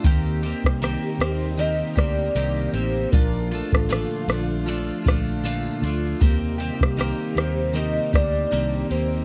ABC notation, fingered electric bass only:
X:1
M:4/4
L:1/16
Q:"Swing 16ths" 1/4=78
K:Eblyd
V:1 name="Fingered electric bass" clef=bass
E,,3 C,,2 z E,,4 D,,2 C,,2 A,,,2 | B,,,3 A,,,2 z B,,,4 B,,,4 D,,2 | E,,3 C,,2 z E,,4 D,,2 C,,2 E,,2 |]